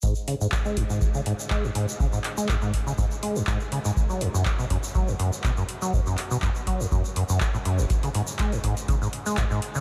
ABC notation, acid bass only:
X:1
M:4/4
L:1/16
Q:"Swing 16ths" 1/4=122
K:F#mix
V:1 name="Acid bass" clef=bass
G,, z C, G,, z G, F,, G,, z C, G,, z G, F,, G,, z | C, G,, z G, F,, G,, z C, G,, z G, F,, G,, z C, G,, | z F, E,, F,, z B,, F,, z F, E,, F,, z B,, F,, z F, | E,, F,, z B,, F,, z F, E,, F,, z F,, F,, z =A,, F,, F,,, |
z C, G,, z G, F,, G,, z C, G,, z G, F,, G,, z C, |]